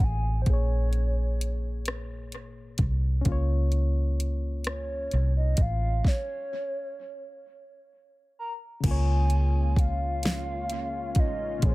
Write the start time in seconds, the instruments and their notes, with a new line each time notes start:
Already playing: reed electric piano A#3 C#4 F4 C#5
0.00 fingered electric bass A1, soft synth lead G#5, kick
0.42 reed electric piano A#2, soft synth lead C5
0.46 fingered electric bass A#1, reed electric piano A#3 G#4, soft synth lead C#5, kick, closed hi-hat
0.53 reed electric piano C#5
0.93 closed hi-hat
1.41 closed hi-hat
1.86 cross-stick, closed hi-hat
2.32 fingered electric bass G#1, closed hi-hat
2.78 fingered electric bass C2, kick, closed hi-hat
3.21 reed electric piano A#3 C#4, closed hi-hat
3.26 fingered electric bass C#2, reed electric piano F4, kick
3.32 reed electric piano C#5
3.72 closed hi-hat
4.20 closed hi-hat
4.64 soft synth lead C#5, cross-stick, closed hi-hat
5.11 fingered electric bass C2, closed hi-hat
5.37 soft synth lead D#5
5.57 fingered electric bass A1, kick, closed hi-hat
5.61 soft synth lead F5
6.05 soft synth lead C#5, kick, snare
8.39 soft synth lead A#5
8.80 fingered electric bass C#2, reed electric piano C#3 A#3, analog synth pad G#3 A#3 C#4 F4, kick, closed hi-hat, crash
8.85 reed electric piano F4, soft synth lead G#5
8.91 reed electric piano C#5
9.30 closed hi-hat
9.76 soft synth lead F5, kick, closed hi-hat
10.23 snare, closed hi-hat
10.70 closed hi-hat
11.15 fingered electric bass A1, kick, closed hi-hat
11.19 soft synth lead D#5
11.59 reed electric piano A#2 A#3, kick, closed hi-hat
11.63 fingered electric bass A#1, reed electric piano G#4, soft synth lead C#5
11.69 reed electric piano C5